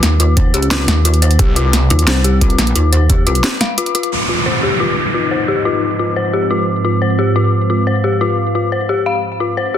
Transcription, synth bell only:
0.20 0.31 F4 medium
0.37 0.48 C5 medium
0.54 0.61 G4 medium
0.71 0.87 F4 loud
1.05 1.16 F4 medium
1.22 1.33 C5 medium
1.39 1.46 G4 medium
1.56 1.72 F4 loud
1.90 2.02 F4 medium
2.07 2.19 C5 medium
2.24 2.31 G4 medium
2.41 2.58 F4 loud
2.75 2.87 F4 medium
2.93 3.04 C5 medium
3.10 3.16 G4 medium
3.27 3.43 F4 loud
3.61 3.72 F5 loud
3.78 3.89 F4 loud
3.95 4.11 F4 loud
4.29 4.40 F4 medium
4.46 4.57 C5 medium
4.63 4.70 G4 medium
4.80 4.96 F4 medium
5.14 5.25 F4 medium
5.31 5.43 C5 medium
5.48 5.55 G4 medium
5.65 5.81 F4 medium
5.99 6.11 F4 medium
6.16 6.28 C5 medium
6.33 6.40 G4 medium
6.51 6.67 F4 medium
6.85 6.96 F4 medium
7.02 7.13 C5 medium
7.19 7.25 G4 medium
7.36 7.52 F4 loud
7.70 7.81 F4 medium
7.87 7.98 C5 medium
8.04 8.11 G4 medium
8.21 8.37 F4 loud
8.55 8.66 F4 medium
8.72 8.83 C5 medium
8.89 8.96 G4 medium
9.06 9.18 F5 loud
9.40 9.47 F4 medium
9.57 9.69 C5 medium
9.74 9.78 G4 medium

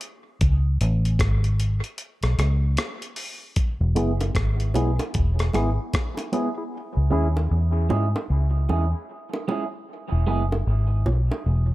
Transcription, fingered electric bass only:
0.41 0.79 C#2 loud
0.81 1.18 A1 loud
1.19 1.80 G#1 medium
2.23 2.38 B1 medium
2.39 2.76 C#2 loud
3.81 3.96 E1 medium
3.96 4.33 F#1 medium
4.35 4.73 G#1 medium
4.75 4.98 B1 medium
5.15 5.52 E1 loud
5.54 5.77 G#1 medium
6.97 7.11 C#2 medium
7.12 7.49 D#2 medium
7.51 7.89 E2 medium
7.91 8.14 G#2 medium
8.30 8.68 C#2 medium
8.70 8.92 E2 medium
10.12 10.28 E1 medium
10.28 10.65 F#1 medium
10.67 11.05 G#1 medium
11.07 11.30 B1 medium
11.46 11.74 E1 loud

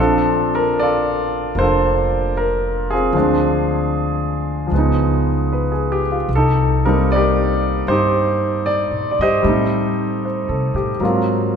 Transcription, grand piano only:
0.00 3.11 F3 soft
0.00 2.92 C4 soft
0.00 1.54 D4 medium
0.00 0.81 F4 soft
0.00 0.50 A4 medium
0.00 0.13 D#5 soft
0.55 0.77 A#4 medium
0.79 1.60 F4 medium
0.79 1.59 A4 medium
0.79 1.54 D5 medium
1.55 3.13 A#3 soft
1.55 3.15 D4 soft
1.55 2.32 C5 medium
1.61 2.91 F4 medium
1.61 3.12 A4 medium
2.37 2.92 A#4 medium
2.90 3.15 C4 soft
2.90 6.01 F4 soft
2.90 5.70 G#4 medium
3.13 4.65 F3 soft
3.13 4.69 G#3 soft
3.13 4.72 C4 soft
3.13 4.72 D4 medium
4.67 6.26 F3 soft
4.67 6.28 G#3 soft
4.74 6.29 B3 soft
4.74 6.31 D#4 soft
5.52 5.89 B4 soft
5.72 6.05 G#4 soft
5.92 6.14 G4 soft
6.11 6.37 F4 soft
6.35 6.85 D#4 soft
6.35 6.82 A4 medium
6.85 9.41 G3 soft
6.85 9.44 A#3 soft
6.85 9.44 C4 soft
6.85 7.89 D#4 medium
6.85 7.06 A#4 medium
7.12 8.64 A#4 medium
7.12 7.90 D5 medium
7.16 7.88 G4 medium
7.88 9.41 D#4 medium
7.88 9.21 G4 medium
7.88 8.67 C5 medium
8.66 9.10 D5 medium
9.11 9.19 D5 medium
9.21 10.74 G4 medium
9.21 10.24 C5 medium
9.21 11.56 D#5 medium
9.42 11.00 G3 soft
9.42 11.01 A3 soft
9.42 11.01 C4 soft
9.48 11.03 D#4 medium
10.25 10.74 C5 soft
10.48 10.89 A4 soft
10.76 11.16 G4 soft
11.00 11.56 F#3 soft
11.00 11.56 A#3 soft
11.00 11.56 C4 soft
11.05 11.56 F4 medium

